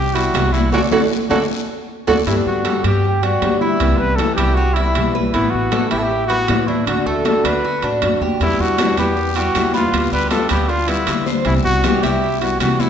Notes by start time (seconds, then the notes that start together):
Already playing: C2 G4
0.14 G3 B3 E4 F#4, high conga, high timbale
0.34 C2 C3 E3 G3 B3 E4, high conga, high timbale, low timbale, short guiro
0.52 E4 F#4, high conga, short guiro
0.72 D2 A3 C4 D4 F#4 A4, high conga, high timbale, long guiro
0.91 D2 A3 C4 D4 F#4 A4, high conga, high timbale, long guiro
1.29 D2 A3 C4 D4 F#4 A4, high conga, high timbale, long guiro
2.07 D2 A3 C4 D4 F#4 A4, high conga, high timbale, long guiro
2.26 G2 D3 G3 B3 D4 E4 G4, high conga, high timbale
2.45 G2 F#4, high conga
2.65 D3 G3 B3 G4 A4, high conga, high timbale
2.84 G2 G3 B3 G4, high conga, high timbale
3.04 muted nylon-string guitar stroke, high conga
3.22 G3 B3 D4 F#4 G4, high conga, high timbale
3.42 D3 G3 B3 G4, high conga, high timbale, low timbale
3.60 E4, high conga
3.80 C2 C3 E3 G3 B3 E4, high conga, high timbale
3.98 C2 B4, high conga
4.16 C3 E3 G3 A4, high conga, high timbale
4.20 B3 E4
4.35 C2 E4 G4, high conga, high timbale
4.39 G3 B3
4.54 F#4 G4, high conga
4.58 muted nylon-string guitar stroke
4.74 E4, high conga, high timbale
4.78 G3 B3
4.95 B1 E3 G3 B3 E4, high conga, high timbale
5.15 B4, high conga
5.31 A1 E3 A3 B3 E4, high conga, high timbale
5.35 B3 E4
5.50 A1 F#4, high conga
5.72 E3 A3 B3 E4 A4, high conga, high timbale
5.89 A1 B3 E4 G4, high conga, high timbale
5.93 A3
5.98 A4
6.03 G4
6.10 muted nylon-string guitar stroke, high conga
6.27 B3 E4 F#4, high conga, high timbale
6.31 A3
6.48 A2 E3 A3 B3 E4, high conga, high timbale, low timbale
6.67 D4 E4, high conga
6.86 D2 D3 A3 D4 F#4, high conga, high timbale
7.06 D2 A3 A4, high conga
7.24 D3 A3 D4 F#4 A4, high conga, high timbale
7.44 D2 A3 D4 F#4 B4, high conga, high timbale
7.64 F#4, muted nylon-string guitar stroke, high conga
7.82 A2 A3 D4 F#4, high conga, high timbale
8.01 F#2 D3 A3 D4 F#4, high conga, high timbale
8.21 E2 G4, high conga
8.40 E2 B2 D3 G3 B3 E4, high conga, high timbale, long guiro
8.59 E2 F#4, high conga
8.78 B2 D3 G3 B3 D4 E4, high conga, high timbale, short guiro
8.97 E2 G3 B3 E4 G4, high conga, high timbale, short guiro
9.16 muted nylon-string guitar stroke, high conga, long guiro
9.36 G3 B3 E4 F#4, high conga, high timbale
9.55 E2 B2 D3 G3 B3 E4, high conga, high timbale, short guiro
9.74 B3 F4, high conga, short guiro
9.92 D2 D3 G3 B3 F4, high conga, high timbale, long guiro
10.12 D2 G3 B4
10.30 D3 G3 B3 F4 A4, high conga, high timbale, short guiro
10.49 D2 G3 B3 F4 G4, high conga, high timbale, short guiro
10.68 D4 F4, muted nylon-string guitar stroke, high conga, long guiro
10.87 G3 B3 E4 F4, high conga, high timbale
11.05 D3 G3 B3 F4, high conga, high timbale, short guiro
11.26 C5, high conga, short guiro
11.45 C2 C3 E3 G3 B3 E4, high conga, high timbale, long guiro
11.64 C2 F#4, high conga
11.83 C3 E3 G3 B3 E4 G4, high conga, high timbale, short guiro
12.03 C2 G3 B3 E4 G4, high conga, high timbale, short guiro
12.22 muted nylon-string guitar stroke, high conga, long guiro
12.41 G3 B3 E4 F#4, high conga, high timbale
12.60 C3 E3 G3 B3 E4 F#4, high conga, high timbale, short guiro
12.80 E4 F#4, high conga, short guiro